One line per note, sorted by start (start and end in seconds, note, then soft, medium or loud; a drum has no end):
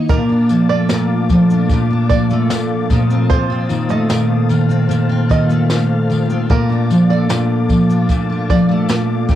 0.00 0.18 D#3 medium
0.00 0.69 A#3 medium
0.00 0.18 D#4 medium
0.09 0.89 A#2 medium
0.09 2.88 A#2 medium
0.09 6.46 F4 medium
0.09 0.48 A#4 medium
0.09 2.88 D5 medium
0.09 9.26 A5 medium
0.09 kick loud
0.09 shaker medium
0.29 1.50 D4 medium
0.50 1.30 F3 medium
0.50 tambourine soft
0.50 shaker medium
0.70 2.30 A3 medium
0.70 1.26 D5 medium
0.89 1.70 A#2 medium
0.89 snare loud
0.89 tambourine medium
0.89 shaker medium
1.29 2.10 F3 medium
1.29 kick medium
1.29 tambourine soft
1.29 shaker soft
1.50 1.89 D4 medium
1.50 shaker medium
1.70 2.49 A#2 medium
1.70 kick medium
1.70 tambourine soft
1.70 shaker medium
1.91 2.98 D4 medium
2.10 3.69 F3 medium
2.10 2.29 D5 medium
2.10 kick medium
2.10 tambourine soft
2.10 shaker medium
2.30 3.34 A3 medium
2.30 shaker medium
2.50 2.89 A#2 medium
2.50 snare loud
2.50 tambourine medium
2.50 shaker medium
2.90 3.30 A#2 medium
2.90 6.47 A#2 medium
2.90 6.46 C4 medium
2.90 4.49 D#5 medium
2.90 kick medium
2.90 snare soft
2.90 tambourine soft
2.90 shaker soft
3.10 3.48 C4 medium
3.10 shaker medium
3.29 4.09 A#2 medium
3.29 3.68 C5 medium
3.29 kick loud
3.29 shaker medium
3.50 4.68 C4 medium
3.69 4.48 D#3 medium
3.69 tambourine soft
3.69 shaker soft
3.89 5.49 A3 medium
3.89 4.46 D#5 medium
3.89 shaker medium
4.09 4.88 A#2 medium
4.09 snare medium
4.09 tambourine medium
4.09 shaker medium
4.49 5.28 D#3 medium
4.49 6.48 F5 medium
4.49 tambourine soft
4.49 shaker soft
4.69 5.08 C4 medium
4.69 shaker medium
4.89 5.68 A#2 medium
4.89 tambourine soft
4.89 shaker medium
5.09 6.28 C4 medium
5.29 6.08 D#3 medium
5.29 5.49 D#5 medium
5.29 kick medium
5.29 tambourine soft
5.29 shaker medium
5.49 7.09 A3 medium
5.49 shaker medium
5.70 6.48 A#2 medium
5.70 snare loud
5.70 tambourine medium
5.70 shaker medium
6.09 6.57 D#3 medium
6.09 tambourine soft
6.09 shaker soft
6.29 6.57 C4 medium
6.29 shaker medium
6.49 7.28 A#2 medium
6.49 9.35 A#2 medium
6.49 9.35 F4 medium
6.49 6.88 A#4 medium
6.49 9.35 D5 medium
6.49 kick loud
6.49 shaker medium
6.69 7.89 D4 medium
6.90 7.69 F3 medium
6.90 tambourine medium
6.90 shaker soft
7.10 8.68 A3 medium
7.10 7.66 D5 medium
7.29 8.08 A#2 medium
7.29 snare medium
7.29 tambourine medium
7.29 shaker medium
7.69 8.49 F3 medium
7.69 kick medium
7.69 tambourine soft
7.69 shaker soft
7.89 8.29 D4 medium
7.89 shaker medium
8.09 8.87 A#2 medium
8.09 kick medium
8.09 tambourine soft
8.09 shaker medium
8.30 9.35 D4 medium
8.50 9.35 F3 medium
8.50 8.69 D5 medium
8.50 kick medium
8.50 tambourine soft
8.50 shaker soft
8.69 9.35 A3 medium
8.88 9.27 A#2 medium
8.88 snare loud
8.88 tambourine medium
8.88 shaker medium
9.29 9.35 A#2 medium
9.29 9.35 G4 medium
9.29 kick medium
9.29 snare soft
9.29 tambourine soft
9.29 shaker soft